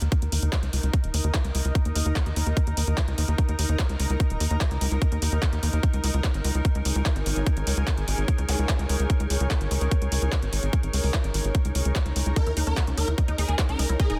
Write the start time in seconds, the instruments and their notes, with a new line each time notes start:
Already playing: ambient pad D#4 A#4 D#5 A#5
0.02 analog synth bass D#2, closed hi-hat
0.12 kick, closed hi-hat
0.22 analog synth bass D#2, closed hi-hat
0.32 analog synth bass D#2, open hi-hat
0.42 analog synth bass D#2, closed hi-hat
0.53 kick, clap, closed hi-hat
0.63 analog synth bass C#2, closed hi-hat
0.73 analog synth bass C#2, open hi-hat
0.83 analog synth bass C#2, closed hi-hat
0.94 kick, closed hi-hat
1.04 analog synth bass D#1, closed hi-hat
1.14 analog synth bass D#2, open hi-hat
1.24 analog synth bass D#2, closed hi-hat
1.34 kick, clap, closed hi-hat
1.45 analog synth bass C#2, closed hi-hat
1.55 analog synth bass C#2, open hi-hat
1.65 analog synth bass C#2, closed hi-hat
1.75 kick, closed hi-hat
1.85 analog synth bass D#2, closed hi-hat
1.96 analog synth bass D#2, open hi-hat
2.06 analog synth bass D#2, closed hi-hat
2.16 kick, clap, closed hi-hat
2.26 analog synth bass D#2, closed hi-hat
2.36 analog synth bass D#2, open hi-hat
2.47 analog synth bass D#2, closed hi-hat
2.57 kick, closed hi-hat
2.67 analog synth bass D#2, closed hi-hat
2.77 analog synth bass D#2, open hi-hat
2.87 analog synth bass D#2, closed hi-hat
2.98 kick, clap, closed hi-hat
3.08 analog synth bass C#2, closed hi-hat
3.18 analog synth bass D#2, open hi-hat
3.28 analog synth bass D#2, closed hi-hat
3.38 kick, closed hi-hat
3.49 analog synth bass D#2, closed hi-hat
3.59 analog synth bass D#2, open hi-hat
3.69 analog synth bass D#2, closed hi-hat
3.79 kick, clap, closed hi-hat
3.89 analog synth bass C#2, closed hi-hat
4.00 analog synth bass C#2, open hi-hat
4.10 analog synth bass C#2, closed hi-hat
4.20 kick, closed hi-hat
4.30 analog synth bass D#1, closed hi-hat
4.40 analog synth bass D#2, open hi-hat
4.51 analog synth bass D#2, closed hi-hat
4.61 kick, clap, closed hi-hat
4.71 analog synth bass C#2, closed hi-hat
4.81 analog synth bass C#2, open hi-hat
4.91 analog synth bass C#2, closed hi-hat
5.02 kick, closed hi-hat
5.12 analog synth bass D#2, closed hi-hat
5.22 analog synth bass D#2, open hi-hat
5.32 analog synth bass D#2, closed hi-hat
5.42 kick, clap, closed hi-hat
5.53 analog synth bass D#2, closed hi-hat
5.63 analog synth bass D#2, open hi-hat
5.73 analog synth bass D#2, closed hi-hat
5.83 ambient pad G#4, kick, closed hi-hat
5.92 analog synth bass C#2, ambient pad C#5, closed hi-hat
6.04 analog synth bass C#2, open hi-hat
6.14 analog synth bass C#2, closed hi-hat
6.24 ambient pad G#5, kick, clap, closed hi-hat
6.34 analog synth bass G#1, closed hi-hat
6.44 analog synth bass C#2, open hi-hat
6.55 analog synth bass C#2, closed hi-hat
6.65 kick, closed hi-hat
6.75 analog synth bass C#2, closed hi-hat
6.85 analog synth bass C#2, open hi-hat
6.95 analog synth bass C#2, closed hi-hat
7.06 kick, clap, closed hi-hat
7.16 analog synth bass G#1, closed hi-hat
7.26 analog synth bass G#1, open hi-hat
7.36 analog synth bass G#1
7.46 kick, closed hi-hat
7.57 analog synth bass G#1, closed hi-hat
7.67 analog synth bass C#2, open hi-hat
7.77 analog synth bass C#2, closed hi-hat
7.87 kick, clap, closed hi-hat
7.98 analog synth bass G#1, closed hi-hat
8.08 analog synth bass G#1, open hi-hat
8.18 analog synth bass G#1, closed hi-hat
8.28 kick, closed hi-hat
8.38 analog synth bass C#2, closed hi-hat
8.49 analog synth bass C#2, open hi-hat, zap
8.59 analog synth bass C#2, closed hi-hat
8.69 kick, clap, closed hi-hat
8.79 analog synth bass C#2, closed hi-hat
8.89 analog synth bass C#2, open hi-hat
9.00 analog synth bass C#2, closed hi-hat
9.10 kick, closed hi-hat
9.20 analog synth bass C#2, closed hi-hat
9.30 analog synth bass C#2, open hi-hat
9.40 analog synth bass C#2, closed hi-hat
9.51 kick, clap, closed hi-hat
9.60 analog synth bass G#1, ambient pad A#5, closed hi-hat
9.71 analog synth bass C#2, open hi-hat
9.81 analog synth bass C#2, closed hi-hat
9.91 kick, closed hi-hat
10.02 analog synth bass C#2, closed hi-hat
10.12 analog synth bass C#2, open hi-hat
10.22 analog synth bass C#2
10.32 kick, clap, closed hi-hat
10.42 analog synth bass G#1, closed hi-hat
10.53 analog synth bass G#1, open hi-hat
10.63 analog synth bass G#1, closed hi-hat
10.73 kick, closed hi-hat
10.83 analog synth bass G#1, closed hi-hat
10.93 analog synth bass C#2, open hi-hat
11.04 analog synth bass C#2, open hi-hat
11.14 kick, clap
11.24 analog synth bass G#1, closed hi-hat
11.34 analog synth bass G#1, open hi-hat
11.44 analog synth bass G#1, closed hi-hat
11.55 kick, closed hi-hat
11.65 analog synth bass C#2, closed hi-hat
11.75 analog synth bass C#2, open hi-hat
11.85 analog synth bass C#2, closed hi-hat
11.96 kick, clap, closed hi-hat
12.06 analog synth bass C#2, closed hi-hat
12.16 analog synth bass C#2, open hi-hat
12.26 analog synth bass C#2, closed hi-hat
12.36 ambient pad D#4 A#4, synth arpeggio sound D#4, digital synth lead A#4, kick, closed hi-hat
12.47 analog synth bass D#2, synth arpeggio sound E4, closed hi-hat
12.57 analog synth bass D#2, synth arpeggio sound D#4, open hi-hat
12.65 analog synth bass D#2, synth arpeggio sound C#4, digital synth lead A#4, ambient pad D#5, closed hi-hat
12.77 synth arpeggio sound F#4, kick, clap, closed hi-hat
12.87 analog synth bass C#2, synth arpeggio sound C#4, closed hi-hat
12.98 analog synth bass D#2, synth arpeggio sound D#4, digital synth lead A#4, open hi-hat
13.08 analog synth bass D#2, synth arpeggio sound E4, closed hi-hat
13.18 synth arpeggio sound D#5, kick, closed hi-hat
13.28 analog synth bass D#2, synth arpeggio sound D#4, closed hi-hat
13.38 analog synth bass D#2, synth arpeggio sound D#4, digital synth lead G#4, open hi-hat
13.49 analog synth bass D#2, synth arpeggio sound D#5, closed hi-hat
13.59 synth arpeggio sound F#4, kick, clap, closed hi-hat
13.69 analog synth bass C#2, synth arpeggio sound C#4, digital synth lead A#4, closed hi-hat
13.79 analog synth bass C#2, synth arpeggio sound D#4, open hi-hat
13.89 analog synth bass C#2, synth arpeggio sound E4, closed hi-hat
14.00 digital synth lead G#4, synth arpeggio sound D#5, kick, closed hi-hat
14.10 analog synth bass D#1, synth arpeggio sound D#4, closed hi-hat